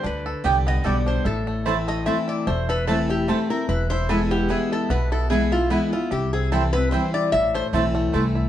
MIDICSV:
0, 0, Header, 1, 6, 480
1, 0, Start_track
1, 0, Key_signature, 0, "minor"
1, 0, Tempo, 404585
1, 55, Time_signature, 3, 2, 24, 8
1, 10070, End_track
2, 0, Start_track
2, 0, Title_t, "Resonator guitar played with a steel bar"
2, 0, Program_c, 0, 25
2, 75, Note_on_c, 0, 71, 89
2, 545, Note_off_c, 0, 71, 0
2, 805, Note_on_c, 0, 75, 117
2, 1014, Note_off_c, 0, 75, 0
2, 1025, Note_on_c, 0, 74, 79
2, 1273, Note_off_c, 0, 74, 0
2, 1276, Note_on_c, 0, 72, 93
2, 1489, Note_off_c, 0, 72, 0
2, 1497, Note_on_c, 0, 69, 88
2, 1977, Note_off_c, 0, 69, 0
2, 2234, Note_on_c, 0, 75, 92
2, 2441, Note_off_c, 0, 75, 0
2, 2445, Note_on_c, 0, 76, 85
2, 2703, Note_off_c, 0, 76, 0
2, 2714, Note_on_c, 0, 74, 91
2, 2929, Note_off_c, 0, 74, 0
2, 2931, Note_on_c, 0, 72, 89
2, 3186, Note_off_c, 0, 72, 0
2, 3198, Note_on_c, 0, 71, 104
2, 3404, Note_off_c, 0, 71, 0
2, 3409, Note_on_c, 0, 69, 73
2, 3665, Note_off_c, 0, 69, 0
2, 3680, Note_on_c, 0, 67, 92
2, 3892, Note_off_c, 0, 67, 0
2, 3901, Note_on_c, 0, 69, 83
2, 4151, Note_off_c, 0, 69, 0
2, 4155, Note_on_c, 0, 70, 88
2, 4370, Note_off_c, 0, 70, 0
2, 4376, Note_on_c, 0, 71, 90
2, 4621, Note_off_c, 0, 71, 0
2, 4626, Note_on_c, 0, 72, 119
2, 4845, Note_off_c, 0, 72, 0
2, 4852, Note_on_c, 0, 69, 73
2, 5107, Note_off_c, 0, 69, 0
2, 5114, Note_on_c, 0, 67, 98
2, 5329, Note_off_c, 0, 67, 0
2, 5349, Note_on_c, 0, 68, 75
2, 5596, Note_off_c, 0, 68, 0
2, 5607, Note_on_c, 0, 69, 93
2, 5816, Note_off_c, 0, 69, 0
2, 5823, Note_on_c, 0, 71, 108
2, 6071, Note_off_c, 0, 71, 0
2, 6075, Note_on_c, 0, 69, 87
2, 6281, Note_off_c, 0, 69, 0
2, 6286, Note_on_c, 0, 68, 84
2, 6544, Note_off_c, 0, 68, 0
2, 6552, Note_on_c, 0, 65, 95
2, 6768, Note_off_c, 0, 65, 0
2, 6777, Note_on_c, 0, 64, 71
2, 7029, Note_off_c, 0, 64, 0
2, 7034, Note_on_c, 0, 65, 91
2, 7249, Note_off_c, 0, 65, 0
2, 7259, Note_on_c, 0, 67, 85
2, 7505, Note_off_c, 0, 67, 0
2, 7509, Note_on_c, 0, 68, 83
2, 7727, Note_off_c, 0, 68, 0
2, 7736, Note_on_c, 0, 69, 78
2, 7977, Note_off_c, 0, 69, 0
2, 7982, Note_on_c, 0, 71, 110
2, 8193, Note_off_c, 0, 71, 0
2, 8198, Note_on_c, 0, 72, 79
2, 8459, Note_off_c, 0, 72, 0
2, 8470, Note_on_c, 0, 74, 97
2, 8682, Note_off_c, 0, 74, 0
2, 8687, Note_on_c, 0, 76, 122
2, 8944, Note_off_c, 0, 76, 0
2, 8958, Note_on_c, 0, 72, 104
2, 9089, Note_off_c, 0, 72, 0
2, 10070, End_track
3, 0, Start_track
3, 0, Title_t, "Mandolin"
3, 0, Program_c, 1, 25
3, 524, Note_on_c, 1, 59, 90
3, 530, Note_on_c, 1, 67, 104
3, 536, Note_on_c, 1, 74, 105
3, 539, Note_on_c, 1, 79, 108
3, 646, Note_off_c, 1, 59, 0
3, 649, Note_off_c, 1, 67, 0
3, 652, Note_off_c, 1, 74, 0
3, 653, Note_off_c, 1, 79, 0
3, 1004, Note_on_c, 1, 59, 83
3, 1009, Note_on_c, 1, 67, 82
3, 1014, Note_on_c, 1, 79, 81
3, 1015, Note_on_c, 1, 74, 98
3, 1126, Note_off_c, 1, 59, 0
3, 1128, Note_off_c, 1, 67, 0
3, 1131, Note_off_c, 1, 74, 0
3, 1131, Note_off_c, 1, 79, 0
3, 1963, Note_on_c, 1, 57, 102
3, 1967, Note_on_c, 1, 64, 106
3, 1969, Note_on_c, 1, 72, 110
3, 1974, Note_on_c, 1, 81, 106
3, 2086, Note_off_c, 1, 57, 0
3, 2088, Note_off_c, 1, 64, 0
3, 2089, Note_off_c, 1, 72, 0
3, 2091, Note_off_c, 1, 81, 0
3, 2445, Note_on_c, 1, 57, 77
3, 2447, Note_on_c, 1, 64, 83
3, 2455, Note_on_c, 1, 72, 90
3, 2457, Note_on_c, 1, 81, 92
3, 2567, Note_off_c, 1, 57, 0
3, 2568, Note_off_c, 1, 64, 0
3, 2572, Note_off_c, 1, 72, 0
3, 2573, Note_off_c, 1, 81, 0
3, 3407, Note_on_c, 1, 57, 88
3, 3412, Note_on_c, 1, 64, 110
3, 3416, Note_on_c, 1, 72, 106
3, 3422, Note_on_c, 1, 81, 108
3, 3528, Note_off_c, 1, 57, 0
3, 3531, Note_off_c, 1, 64, 0
3, 3533, Note_off_c, 1, 72, 0
3, 3536, Note_off_c, 1, 81, 0
3, 3884, Note_on_c, 1, 57, 76
3, 3890, Note_on_c, 1, 64, 78
3, 3893, Note_on_c, 1, 72, 86
3, 3897, Note_on_c, 1, 81, 98
3, 4007, Note_off_c, 1, 57, 0
3, 4010, Note_off_c, 1, 64, 0
3, 4011, Note_off_c, 1, 72, 0
3, 4013, Note_off_c, 1, 81, 0
3, 4849, Note_on_c, 1, 59, 91
3, 4854, Note_on_c, 1, 64, 101
3, 4859, Note_on_c, 1, 71, 104
3, 4863, Note_on_c, 1, 80, 102
3, 4970, Note_off_c, 1, 59, 0
3, 4972, Note_off_c, 1, 64, 0
3, 4975, Note_off_c, 1, 71, 0
3, 4976, Note_off_c, 1, 80, 0
3, 5324, Note_on_c, 1, 59, 81
3, 5329, Note_on_c, 1, 64, 84
3, 5335, Note_on_c, 1, 71, 102
3, 5337, Note_on_c, 1, 80, 101
3, 5447, Note_off_c, 1, 59, 0
3, 5450, Note_off_c, 1, 64, 0
3, 5452, Note_off_c, 1, 71, 0
3, 5454, Note_off_c, 1, 80, 0
3, 6284, Note_on_c, 1, 59, 99
3, 6289, Note_on_c, 1, 64, 88
3, 6291, Note_on_c, 1, 71, 102
3, 6298, Note_on_c, 1, 80, 103
3, 6407, Note_off_c, 1, 59, 0
3, 6410, Note_off_c, 1, 64, 0
3, 6411, Note_off_c, 1, 71, 0
3, 6414, Note_off_c, 1, 80, 0
3, 6764, Note_on_c, 1, 59, 83
3, 6769, Note_on_c, 1, 64, 88
3, 6773, Note_on_c, 1, 71, 91
3, 6776, Note_on_c, 1, 80, 86
3, 6887, Note_off_c, 1, 59, 0
3, 6890, Note_off_c, 1, 64, 0
3, 6891, Note_off_c, 1, 71, 0
3, 6893, Note_off_c, 1, 80, 0
3, 7732, Note_on_c, 1, 60, 105
3, 7738, Note_on_c, 1, 64, 93
3, 7739, Note_on_c, 1, 72, 106
3, 7744, Note_on_c, 1, 79, 103
3, 7851, Note_off_c, 1, 60, 0
3, 7854, Note_off_c, 1, 64, 0
3, 7854, Note_off_c, 1, 72, 0
3, 7857, Note_off_c, 1, 79, 0
3, 8211, Note_on_c, 1, 60, 90
3, 8216, Note_on_c, 1, 64, 83
3, 8219, Note_on_c, 1, 72, 91
3, 8222, Note_on_c, 1, 79, 90
3, 8331, Note_off_c, 1, 60, 0
3, 8333, Note_off_c, 1, 64, 0
3, 8334, Note_off_c, 1, 72, 0
3, 8336, Note_off_c, 1, 79, 0
3, 9170, Note_on_c, 1, 57, 100
3, 9173, Note_on_c, 1, 64, 99
3, 9177, Note_on_c, 1, 72, 104
3, 9180, Note_on_c, 1, 81, 97
3, 9289, Note_off_c, 1, 57, 0
3, 9291, Note_off_c, 1, 64, 0
3, 9293, Note_off_c, 1, 72, 0
3, 9295, Note_off_c, 1, 81, 0
3, 9643, Note_on_c, 1, 57, 82
3, 9652, Note_on_c, 1, 64, 82
3, 9654, Note_on_c, 1, 72, 82
3, 9656, Note_on_c, 1, 81, 83
3, 9766, Note_off_c, 1, 57, 0
3, 9770, Note_off_c, 1, 64, 0
3, 9771, Note_off_c, 1, 72, 0
3, 9773, Note_off_c, 1, 81, 0
3, 10070, End_track
4, 0, Start_track
4, 0, Title_t, "Five-string banjo"
4, 0, Program_c, 2, 105
4, 0, Note_on_c, 2, 69, 65
4, 41, Note_on_c, 2, 62, 63
4, 255, Note_off_c, 2, 69, 0
4, 306, Note_on_c, 2, 69, 68
4, 526, Note_on_c, 2, 67, 62
4, 736, Note_off_c, 2, 62, 0
4, 791, Note_on_c, 2, 59, 78
4, 967, Note_off_c, 2, 69, 0
4, 1002, Note_on_c, 2, 69, 69
4, 1219, Note_off_c, 2, 67, 0
4, 1263, Note_on_c, 2, 62, 61
4, 1449, Note_off_c, 2, 59, 0
4, 1479, Note_off_c, 2, 62, 0
4, 1484, Note_on_c, 2, 64, 64
4, 1489, Note_off_c, 2, 69, 0
4, 1746, Note_on_c, 2, 57, 66
4, 1967, Note_off_c, 2, 64, 0
4, 1967, Note_on_c, 2, 64, 62
4, 2215, Note_off_c, 2, 57, 0
4, 2230, Note_on_c, 2, 57, 76
4, 2438, Note_off_c, 2, 64, 0
4, 2443, Note_on_c, 2, 64, 67
4, 2703, Note_off_c, 2, 64, 0
4, 2703, Note_on_c, 2, 64, 55
4, 2889, Note_off_c, 2, 57, 0
4, 2933, Note_on_c, 2, 57, 78
4, 3191, Note_on_c, 2, 69, 68
4, 3406, Note_off_c, 2, 64, 0
4, 3411, Note_on_c, 2, 64, 64
4, 3623, Note_off_c, 2, 57, 0
4, 3673, Note_off_c, 2, 64, 0
4, 3673, Note_on_c, 2, 64, 59
4, 3850, Note_off_c, 2, 69, 0
4, 3897, Note_on_c, 2, 57, 64
4, 4157, Note_off_c, 2, 64, 0
4, 4157, Note_on_c, 2, 64, 53
4, 4372, Note_off_c, 2, 64, 0
4, 4376, Note_on_c, 2, 64, 64
4, 4377, Note_off_c, 2, 57, 0
4, 4643, Note_off_c, 2, 64, 0
4, 4643, Note_on_c, 2, 64, 68
4, 4852, Note_off_c, 2, 64, 0
4, 4857, Note_on_c, 2, 64, 67
4, 5115, Note_on_c, 2, 59, 78
4, 5336, Note_off_c, 2, 64, 0
4, 5341, Note_on_c, 2, 64, 66
4, 5603, Note_off_c, 2, 64, 0
4, 5603, Note_on_c, 2, 64, 57
4, 5772, Note_off_c, 2, 59, 0
4, 5815, Note_on_c, 2, 59, 81
4, 6073, Note_off_c, 2, 64, 0
4, 6073, Note_on_c, 2, 64, 68
4, 6292, Note_off_c, 2, 64, 0
4, 6292, Note_on_c, 2, 64, 65
4, 6505, Note_off_c, 2, 59, 0
4, 6548, Note_off_c, 2, 64, 0
4, 6548, Note_on_c, 2, 64, 66
4, 6765, Note_on_c, 2, 59, 69
4, 7037, Note_off_c, 2, 64, 0
4, 7037, Note_on_c, 2, 64, 54
4, 7244, Note_off_c, 2, 64, 0
4, 7248, Note_on_c, 2, 64, 62
4, 7251, Note_off_c, 2, 59, 0
4, 7519, Note_on_c, 2, 60, 63
4, 7722, Note_off_c, 2, 64, 0
4, 7737, Note_on_c, 2, 64, 68
4, 7981, Note_off_c, 2, 60, 0
4, 7996, Note_on_c, 2, 60, 72
4, 8199, Note_off_c, 2, 64, 0
4, 8213, Note_on_c, 2, 64, 62
4, 8458, Note_off_c, 2, 64, 0
4, 8472, Note_on_c, 2, 64, 56
4, 8652, Note_off_c, 2, 60, 0
4, 8684, Note_off_c, 2, 64, 0
4, 8698, Note_on_c, 2, 64, 64
4, 8951, Note_on_c, 2, 57, 66
4, 9164, Note_off_c, 2, 64, 0
4, 9178, Note_on_c, 2, 64, 63
4, 9413, Note_off_c, 2, 57, 0
4, 9427, Note_on_c, 2, 57, 75
4, 9638, Note_off_c, 2, 64, 0
4, 9653, Note_on_c, 2, 64, 67
4, 9896, Note_off_c, 2, 64, 0
4, 9910, Note_on_c, 2, 64, 52
4, 10070, Note_off_c, 2, 57, 0
4, 10070, Note_off_c, 2, 64, 0
4, 10070, End_track
5, 0, Start_track
5, 0, Title_t, "Steel-string acoustic guitar"
5, 0, Program_c, 3, 25
5, 53, Note_on_c, 3, 50, 88
5, 505, Note_off_c, 3, 50, 0
5, 520, Note_on_c, 3, 50, 92
5, 526, Note_on_c, 3, 55, 94
5, 535, Note_on_c, 3, 59, 105
5, 543, Note_on_c, 3, 67, 107
5, 980, Note_off_c, 3, 50, 0
5, 989, Note_off_c, 3, 55, 0
5, 993, Note_off_c, 3, 59, 0
5, 994, Note_on_c, 3, 50, 87
5, 997, Note_off_c, 3, 67, 0
5, 1001, Note_on_c, 3, 55, 84
5, 1009, Note_on_c, 3, 59, 90
5, 1016, Note_on_c, 3, 67, 89
5, 1463, Note_off_c, 3, 50, 0
5, 1467, Note_off_c, 3, 55, 0
5, 1470, Note_off_c, 3, 59, 0
5, 1474, Note_off_c, 3, 67, 0
5, 1491, Note_on_c, 3, 45, 93
5, 1974, Note_on_c, 3, 52, 82
5, 1983, Note_on_c, 3, 57, 94
5, 1991, Note_on_c, 3, 60, 104
5, 2003, Note_on_c, 3, 64, 108
5, 2410, Note_off_c, 3, 45, 0
5, 2429, Note_off_c, 3, 52, 0
5, 2438, Note_off_c, 3, 57, 0
5, 2442, Note_off_c, 3, 60, 0
5, 2443, Note_on_c, 3, 52, 75
5, 2448, Note_off_c, 3, 64, 0
5, 2451, Note_on_c, 3, 57, 84
5, 2458, Note_on_c, 3, 60, 88
5, 2464, Note_on_c, 3, 64, 104
5, 2908, Note_off_c, 3, 52, 0
5, 2912, Note_off_c, 3, 57, 0
5, 2916, Note_off_c, 3, 60, 0
5, 2918, Note_off_c, 3, 64, 0
5, 2936, Note_on_c, 3, 40, 89
5, 3416, Note_on_c, 3, 52, 93
5, 3427, Note_on_c, 3, 57, 98
5, 3432, Note_on_c, 3, 60, 93
5, 3444, Note_on_c, 3, 64, 103
5, 3852, Note_off_c, 3, 40, 0
5, 3875, Note_off_c, 3, 52, 0
5, 3880, Note_off_c, 3, 57, 0
5, 3883, Note_off_c, 3, 60, 0
5, 3889, Note_off_c, 3, 64, 0
5, 3895, Note_on_c, 3, 52, 81
5, 3904, Note_on_c, 3, 57, 86
5, 3911, Note_on_c, 3, 60, 89
5, 3917, Note_on_c, 3, 64, 89
5, 4139, Note_off_c, 3, 64, 0
5, 4146, Note_off_c, 3, 52, 0
5, 4150, Note_off_c, 3, 57, 0
5, 4154, Note_off_c, 3, 60, 0
5, 4154, Note_on_c, 3, 64, 72
5, 4180, Note_on_c, 3, 60, 53
5, 4367, Note_off_c, 3, 64, 0
5, 4380, Note_off_c, 3, 60, 0
5, 4386, Note_on_c, 3, 40, 90
5, 4857, Note_on_c, 3, 52, 97
5, 4869, Note_on_c, 3, 56, 100
5, 4876, Note_on_c, 3, 59, 108
5, 4886, Note_on_c, 3, 64, 94
5, 5298, Note_off_c, 3, 40, 0
5, 5308, Note_off_c, 3, 52, 0
5, 5321, Note_off_c, 3, 56, 0
5, 5323, Note_on_c, 3, 52, 79
5, 5325, Note_off_c, 3, 59, 0
5, 5330, Note_off_c, 3, 64, 0
5, 5336, Note_on_c, 3, 56, 75
5, 5346, Note_on_c, 3, 59, 91
5, 5352, Note_on_c, 3, 64, 92
5, 5788, Note_off_c, 3, 52, 0
5, 5795, Note_off_c, 3, 56, 0
5, 5800, Note_off_c, 3, 59, 0
5, 5803, Note_off_c, 3, 64, 0
5, 5816, Note_on_c, 3, 47, 86
5, 6302, Note_on_c, 3, 52, 89
5, 6311, Note_on_c, 3, 56, 95
5, 6317, Note_on_c, 3, 59, 96
5, 6325, Note_on_c, 3, 64, 107
5, 6546, Note_off_c, 3, 64, 0
5, 6549, Note_off_c, 3, 52, 0
5, 6554, Note_off_c, 3, 56, 0
5, 6557, Note_off_c, 3, 59, 0
5, 6560, Note_on_c, 3, 64, 64
5, 6733, Note_off_c, 3, 47, 0
5, 6766, Note_on_c, 3, 52, 92
5, 6767, Note_on_c, 3, 56, 90
5, 6770, Note_off_c, 3, 64, 0
5, 6778, Note_on_c, 3, 59, 96
5, 6787, Note_on_c, 3, 64, 97
5, 7010, Note_off_c, 3, 64, 0
5, 7021, Note_off_c, 3, 52, 0
5, 7022, Note_off_c, 3, 56, 0
5, 7024, Note_on_c, 3, 64, 60
5, 7028, Note_off_c, 3, 59, 0
5, 7052, Note_on_c, 3, 59, 53
5, 7242, Note_off_c, 3, 64, 0
5, 7256, Note_off_c, 3, 59, 0
5, 7256, Note_on_c, 3, 48, 94
5, 7734, Note_on_c, 3, 52, 95
5, 7744, Note_on_c, 3, 55, 95
5, 7752, Note_on_c, 3, 60, 109
5, 7758, Note_on_c, 3, 64, 97
5, 7985, Note_off_c, 3, 52, 0
5, 7989, Note_off_c, 3, 64, 0
5, 7990, Note_off_c, 3, 55, 0
5, 7994, Note_off_c, 3, 60, 0
5, 8003, Note_on_c, 3, 64, 68
5, 8033, Note_on_c, 3, 60, 58
5, 8172, Note_off_c, 3, 48, 0
5, 8211, Note_off_c, 3, 64, 0
5, 8212, Note_on_c, 3, 52, 85
5, 8217, Note_on_c, 3, 55, 89
5, 8218, Note_off_c, 3, 60, 0
5, 8232, Note_on_c, 3, 60, 97
5, 8235, Note_on_c, 3, 64, 97
5, 8672, Note_off_c, 3, 52, 0
5, 8675, Note_off_c, 3, 55, 0
5, 8682, Note_off_c, 3, 60, 0
5, 8684, Note_off_c, 3, 64, 0
5, 8704, Note_on_c, 3, 45, 89
5, 9179, Note_on_c, 3, 52, 88
5, 9186, Note_on_c, 3, 57, 105
5, 9196, Note_on_c, 3, 60, 99
5, 9201, Note_on_c, 3, 64, 106
5, 9616, Note_off_c, 3, 45, 0
5, 9636, Note_off_c, 3, 52, 0
5, 9639, Note_off_c, 3, 57, 0
5, 9644, Note_off_c, 3, 60, 0
5, 9647, Note_off_c, 3, 64, 0
5, 9659, Note_on_c, 3, 52, 83
5, 9665, Note_on_c, 3, 57, 82
5, 9677, Note_on_c, 3, 60, 83
5, 9680, Note_on_c, 3, 64, 99
5, 10070, Note_off_c, 3, 52, 0
5, 10070, Note_off_c, 3, 57, 0
5, 10070, Note_off_c, 3, 60, 0
5, 10070, Note_off_c, 3, 64, 0
5, 10070, End_track
6, 0, Start_track
6, 0, Title_t, "Upright bass"
6, 0, Program_c, 4, 32
6, 51, Note_on_c, 4, 38, 87
6, 378, Note_off_c, 4, 38, 0
6, 531, Note_on_c, 4, 36, 83
6, 941, Note_off_c, 4, 36, 0
6, 1012, Note_on_c, 4, 35, 101
6, 1422, Note_off_c, 4, 35, 0
6, 1486, Note_on_c, 4, 33, 87
6, 2466, Note_off_c, 4, 33, 0
6, 2930, Note_on_c, 4, 28, 85
6, 3909, Note_off_c, 4, 28, 0
6, 4373, Note_on_c, 4, 28, 92
6, 5351, Note_off_c, 4, 28, 0
6, 5812, Note_on_c, 4, 35, 82
6, 6790, Note_off_c, 4, 35, 0
6, 7257, Note_on_c, 4, 36, 87
6, 8233, Note_off_c, 4, 36, 0
6, 8692, Note_on_c, 4, 33, 93
6, 9019, Note_off_c, 4, 33, 0
6, 9169, Note_on_c, 4, 35, 86
6, 9580, Note_off_c, 4, 35, 0
6, 9658, Note_on_c, 4, 36, 91
6, 10065, Note_off_c, 4, 36, 0
6, 10070, End_track
0, 0, End_of_file